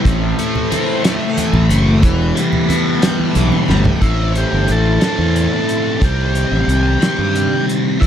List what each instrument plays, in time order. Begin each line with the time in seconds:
Already playing: tanpura E3 A3, overdriven electric guitar E3, tonewheel organ E5
0.02 fingered electric bass A1, tanpura A2, overdriven electric guitar A2, kick, high conga
0.06 tonewheel organ C4 E4 A4 C5, closed hi-hat
0.38 overdriven electric guitar A3, closed hi-hat, low conga
0.55 low conga
0.63 tanpura E3
0.70 overdriven electric guitar C4, closed hi-hat, high conga, low conga
1.04 overdriven electric guitar A3, snare, closed hi-hat, low conga
1.25 tanpura A3
1.36 overdriven electric guitar E3, closed hi-hat, high conga
1.53 fingered electric bass A1, low conga
1.69 fingered electric bass F#1, overdriven electric guitar A3, closed hi-hat
1.88 tanpura A3
2.03 fingered electric bass E1, overdriven electric guitar E3, tonewheel organ B3 G4 B4, kick, closed hi-hat, high conga
2.35 overdriven electric guitar G3, closed hi-hat
2.51 tanpura A2, low conga
2.68 overdriven electric guitar B3, closed hi-hat, high conga
3.01 overdriven electric guitar G3, snare, closed hi-hat
3.17 tanpura E3, high conga
3.34 fingered electric bass B1, overdriven electric guitar E3, closed hi-hat, high conga
3.52 high conga
3.68 fingered electric bass G1, overdriven electric guitar G3, snare, low conga
3.77 tanpura A3
3.85 floor tom, low conga
4.00 fingered electric bass A1, overdriven electric guitar A2 E3 A3 C4 E4 A4, transistor combo organ E4, kick, closed hi-hat
4.35 transistor combo organ G4, closed hi-hat
4.53 fingered electric bass G1
4.68 fingered electric bass A1, transistor combo organ A4, closed hi-hat
5.01 overdriven electric guitar A2 E3 A3 C4 E4 A4, snare, closed hi-hat
5.05 transistor combo organ A4
5.18 fingered electric bass E2
5.36 closed hi-hat
5.69 closed hi-hat
6.00 fingered electric bass C2, overdriven electric guitar C3 D#3 G3 C4 G4, kick, closed hi-hat
6.05 transistor combo organ G4
6.35 closed hi-hat
6.51 fingered electric bass A1
6.68 fingered electric bass C2, closed hi-hat
7.00 overdriven electric guitar C3 D#3 G3 C4 G4, snare, closed hi-hat
7.19 fingered electric bass G2
7.35 closed hi-hat
7.69 closed hi-hat
7.99 fingered electric bass E2, overdriven electric guitar E3 G#3 B3 E4, transistor combo organ E4, kick, closed hi-hat